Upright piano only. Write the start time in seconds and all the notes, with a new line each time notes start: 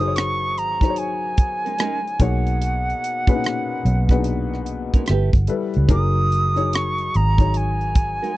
Already playing: A#4
0.00 F#3 D#4 G#4 C5
0.08 C#5
0.82 F#3 D#4 G#4 C5
0.90 C#5
2.20 B2 A#3 D#4 G#4 C#5
3.27 A#2 B2 C#4 G#4 B4
3.35 D#4
4.10 A#2 B2 D4 G#4 B4
4.17 D#4
5.48 G3 E4 A4 B4
5.88 F#3 D#4 G#4 A#4
6.56 F#3 D#4 G#4 C#5
7.39 F#3 D#4 G#4 C#5